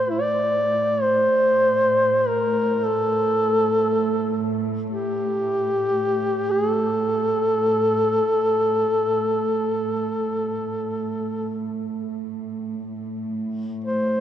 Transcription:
0.00 12.92 A2 soft
0.00 0.11 C5 medium
0.10 0.22 E4 medium
0.21 1.04 D5 medium
1.02 2.30 C5 medium
2.28 2.86 A#4 medium
2.85 4.57 A4 medium
4.90 6.53 G4 medium
6.51 6.70 G#4 medium
6.70 11.63 A4 medium
12.94 14.20 A2 soft
13.85 14.20 C5 medium

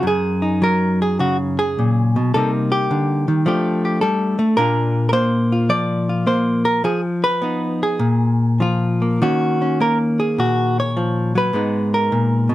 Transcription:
0.03 1.77 F#2 medium
0.07 0.63 G#4 medium
0.42 2.31 D#4 soft
0.62 2.31 F#3 medium
0.62 1.02 A#4 medium
1.02 1.20 G#4 medium
1.19 2.15 C#3 medium
1.19 1.36 F#4 medium
1.59 2.34 G#4 medium
1.79 2.16 A#2 medium
2.16 2.34 B2 medium
2.34 2.90 C3 medium
2.34 3.44 G3 soft
2.34 3.45 A#3 soft
2.34 3.45 D#4 soft
2.34 2.50 A4 medium
2.72 3.46 G4 medium
2.91 3.28 D3 medium
3.28 3.46 D#3 medium
3.46 4.02 F3 medium
3.46 4.38 A3 soft
3.46 4.55 D4 soft
3.46 3.84 G4 soft
3.85 4.01 G4 soft
4.01 4.38 G3 medium
4.01 4.57 A4 medium
4.39 4.57 A3 medium
4.57 6.82 A#2 medium
4.57 5.12 A#3 soft
4.57 6.82 D4 soft
4.57 5.52 F4 soft
4.57 5.08 A#4 medium
5.09 6.26 A#3 medium
5.09 5.13 A#4 medium
5.09 5.69 C5 medium
5.52 6.08 F4 soft
5.69 6.81 F3 medium
5.69 6.26 D5 loud
6.09 6.82 F4 soft
6.27 6.82 A#3 medium
6.27 6.65 C5 medium
6.65 6.84 A#4 medium
6.84 7.99 F3 medium
6.84 7.01 G#4 medium
7.24 7.82 B4 medium
7.42 7.99 B3 medium
7.42 7.99 D#4 soft
7.83 9.22 G#4 medium
7.99 9.19 A#2 medium
8.60 9.19 F3 medium
8.60 9.22 F4 medium
9.02 9.22 A#3 soft
9.22 11.51 D#3 medium
9.22 9.79 A#3 soft
9.22 9.61 C#4 soft
9.22 9.81 F#4 medium
9.62 11.51 C#4 soft
9.80 10.96 A#3 medium
9.80 9.97 A#4 medium
10.20 10.96 G#4 medium
10.38 11.51 A#2 medium
10.38 10.78 F#4 medium
10.80 11.36 C#5 medium
10.97 11.35 F3 medium
11.35 11.54 F#3 medium
11.35 11.94 B4 medium
11.53 12.11 G#2 medium
11.53 12.55 G#3 soft
11.53 12.55 B3 soft
11.53 12.55 D#4 soft
11.94 12.55 A#4 medium
12.12 12.50 A#2 medium
12.49 12.55 B2 medium

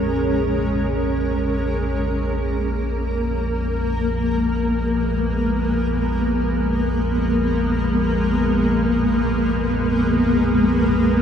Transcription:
0.00 11.22 A#1 medium
0.00 11.22 F2 medium
0.00 1.61 G#3 medium
0.00 1.61 C#4 medium
0.00 11.22 A#4 medium
1.57 11.22 A#3 medium
3.02 11.22 G#3 medium
3.34 11.22 B3 medium

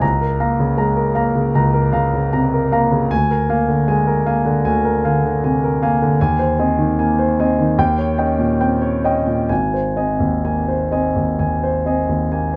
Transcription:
0.02 1.50 C#2 medium
0.02 0.32 A#5 medium
0.21 0.51 A#4 soft
0.40 1.00 A#3 soft
0.40 0.57 F5 soft
0.40 0.57 A#5 soft
0.59 0.89 C#3 soft
0.77 1.15 G#3 soft
0.77 1.08 A#5 soft
0.97 1.27 A#4 soft
1.15 1.77 A#3 soft
1.15 1.32 F5 soft
1.15 1.33 A#5 soft
1.35 1.66 C#3 soft
1.55 3.07 C#2 medium
1.55 1.86 A#5 medium
1.74 2.05 A#4 soft
1.93 2.12 C#3 soft
1.93 2.11 F5 soft
1.93 2.11 A#5 soft
2.14 2.44 C#3 soft
2.33 2.72 C3 soft
2.33 2.64 A#5 soft
2.54 2.84 A#4 soft
2.72 3.11 A#3 soft
2.72 2.89 F5 soft
2.72 2.90 A#5 medium
2.91 3.11 C#3 soft
3.11 4.60 D2 soft
3.11 3.42 G#5 medium
3.31 3.61 A#4 soft
3.49 4.10 A#3 soft
3.49 3.67 F5 soft
3.49 3.67 G#5 soft
3.68 3.99 D3 soft
3.88 4.26 G#3 soft
3.88 4.18 G#5 medium
4.07 4.37 A#4 soft
4.26 4.88 A#3 soft
4.26 4.43 F5 soft
4.26 4.43 G#5 medium
4.45 4.76 D3 soft
4.65 6.15 D2 medium
4.65 4.96 G#5 medium
4.84 5.16 A#4 soft
5.05 5.23 D3 soft
5.05 5.22 F5 soft
5.05 5.22 G#5 soft
5.24 5.55 D3 soft
5.44 5.81 C3 soft
5.44 5.74 G#5 soft
5.64 5.93 A#4 soft
5.82 6.20 A#3 soft
5.82 5.99 F5 soft
5.82 5.99 G#5 medium
6.02 6.20 D3 soft
6.21 7.75 D#2 medium
6.21 6.51 G#5 medium
6.39 6.70 C5 soft
6.59 7.22 C4 soft
6.59 6.76 D#5 soft
6.59 6.76 G#5 soft
6.79 7.10 D#3 soft
6.99 7.39 A#3 soft
6.99 7.30 G#5 medium
7.19 7.50 C5 soft
7.40 7.79 C4 soft
7.40 7.57 D#5 soft
7.40 7.57 G#5 soft
7.58 7.78 D#3 soft
7.78 9.46 D#2 medium
7.78 8.10 G5 medium
7.99 8.31 C#5 soft
8.18 8.86 C#4 soft
8.18 8.37 D#5 soft
8.18 8.37 G5 soft
8.39 8.73 A#2 soft
8.61 9.04 C4 soft
8.61 8.95 G5 soft
8.82 9.17 C#5 soft
9.04 9.50 C#4 soft
9.04 9.24 D#5 soft
9.04 9.25 G5 soft
9.27 9.50 A#2 soft
9.49 11.37 G#1 soft
9.49 9.87 G#5 medium
9.74 10.12 C5 soft
9.96 10.73 C4 soft
9.96 10.18 D#5 soft
9.96 10.18 G#5 soft
10.20 10.59 D#2 soft
10.45 10.93 A#3 soft
10.45 10.83 G#5 soft
10.68 11.07 C5 soft
10.92 11.68 C4 soft
10.92 11.14 D#5 soft
10.92 11.14 G#5 soft
11.16 11.38 D#2 soft
11.39 12.07 D#2 soft
11.39 11.77 G#5 soft
11.63 12.00 C5 soft
11.86 12.56 C4 soft
11.86 12.07 D#5 soft
11.86 12.07 G#5 soft
12.09 12.45 D#2 soft
12.32 12.56 A#3 soft
12.32 12.56 G#5 soft

